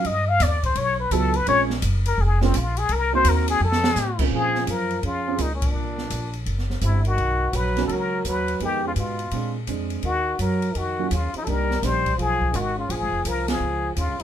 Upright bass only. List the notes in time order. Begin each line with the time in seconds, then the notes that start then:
0.04 G2
0.40 D#2
0.75 B1
1.11 C#2
1.47 A#1
1.82 F#1
2.18 F1
2.53 A#1
2.89 C2
3.24 D#2
3.60 F2
3.95 A2
4.31 A#2
4.67 F#2
5.03 F2
5.38 C#2
5.73 C2
6.10 A#1
6.46 F#1
6.81 G1
7.17 B1
7.53 A#1
7.89 C#2
8.25 D#2
8.60 F2
8.96 G#2
9.31 A#2
9.67 F2
10.03 D#2
10.39 F#2
10.75 F2
11.11 D#2
11.34 muted upright bass stroke
11.47 C2
11.82 A#1
12.18 B1
12.54 G#1
12.89 A#1
13.00 G#1
13.12 F1
13.25 C2
13.60 C#2
13.96 D#2
14.09 C#2